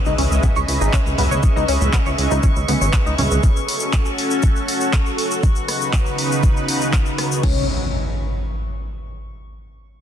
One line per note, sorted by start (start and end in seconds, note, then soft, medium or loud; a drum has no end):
0.00 3.39 C#4 medium
0.00 3.39 G#4 medium
0.00 3.39 B4 medium
0.00 3.39 D#5 medium
0.00 3.39 E5 medium
0.00 7.44 C#6 medium
0.00 impact medium
0.05 0.15 C#2 medium
0.05 0.14 D#4 medium
0.05 shaker soft
0.18 0.27 C#2 loud
0.18 0.22 C#4 medium
0.18 open hi-hat medium
0.31 0.40 C#2 medium
0.31 shaker medium
0.43 0.47 B3 medium
0.43 kick loud
0.43 low conga medium
0.43 shaker medium
0.56 0.65 C#2 medium
0.56 0.59 C#5 medium
0.56 shaker soft
0.68 0.77 C#2 loud
0.68 open hi-hat loud
0.81 0.90 G#1 medium
0.81 0.89 D#4 medium
0.81 shaker medium
0.93 0.97 C#4 medium
0.93 kick loud
0.93 clap loud
0.93 shaker medium
1.06 1.15 C#2 medium
1.06 shaker soft
1.18 1.27 C#2 loud
1.18 1.22 B3 medium
1.18 open hi-hat medium
1.18 low conga medium
1.31 1.40 C#2 medium
1.31 1.34 C#5 medium
1.31 high conga medium
1.31 shaker medium
1.43 kick loud
1.43 shaker medium
1.56 1.65 C#2 medium
1.56 1.64 D#4 medium
1.56 shaker soft
1.68 1.77 C#2 loud
1.68 1.72 C#4 medium
1.68 open hi-hat loud
1.81 1.90 C#2 medium
1.81 low conga medium
1.81 shaker medium
1.93 1.97 B3 medium
1.93 kick loud
1.93 clap loud
1.93 shaker medium
2.06 2.15 C#2 medium
2.06 2.09 C#5 medium
2.06 shaker soft
2.18 2.27 C#2 loud
2.18 open hi-hat medium
2.31 2.40 C#2 medium
2.31 2.39 D#4 medium
2.31 shaker medium
2.43 2.47 C#4 medium
2.43 kick loud
2.43 high conga medium
2.43 shaker medium
2.56 2.65 C#2 medium
2.56 shaker soft
2.68 2.77 C#2 loud
2.68 2.72 B3 medium
2.68 open hi-hat loud
2.68 high conga medium
2.81 2.90 G#1 medium
2.81 2.84 C#5 medium
2.81 shaker medium
2.93 kick loud
2.93 clap loud
2.93 shaker medium
3.06 3.15 C#2 medium
3.06 3.14 D#4 medium
3.06 shaker soft
3.18 3.27 C#2 loud
3.18 3.22 C#4 medium
3.18 open hi-hat medium
3.18 low conga medium
3.31 3.40 C#2 medium
3.31 high conga medium
3.31 shaker medium
3.43 5.41 C#4 medium
3.43 7.39 F#4 medium
3.43 5.41 A4 medium
3.43 kick loud
3.43 shaker medium
3.56 shaker soft
3.68 open hi-hat loud
3.80 shaker medium
3.93 kick loud
3.93 clap loud
3.93 shaker medium
4.05 shaker soft
4.18 open hi-hat medium
4.31 shaker medium
4.43 kick loud
4.43 shaker medium
4.56 shaker soft
4.68 open hi-hat loud
4.81 shaker medium
4.93 kick loud
4.93 clap loud
4.93 shaker medium
5.06 shaker soft
5.18 open hi-hat medium
5.31 shaker medium
5.43 7.41 C#3 medium
5.43 7.41 D#4 medium
5.43 7.41 B4 medium
5.43 kick loud
5.43 shaker medium
5.56 shaker soft
5.68 cross-stick medium
5.68 open hi-hat loud
5.81 shaker medium
5.93 kick loud
5.93 clap loud
5.93 shaker medium
6.06 shaker soft
6.18 open hi-hat medium
6.32 shaker medium
6.43 kick loud
6.43 shaker medium
6.57 shaker soft
6.68 open hi-hat loud
6.81 shaker medium
6.93 kick loud
6.93 clap loud
6.93 shaker medium
7.06 shaker soft
7.18 cross-stick medium
7.18 open hi-hat loud
7.32 shaker medium
7.43 7.67 C#2 loud
7.43 7.67 C#4 medium
7.43 kick loud
7.43 crash medium
7.43 impact medium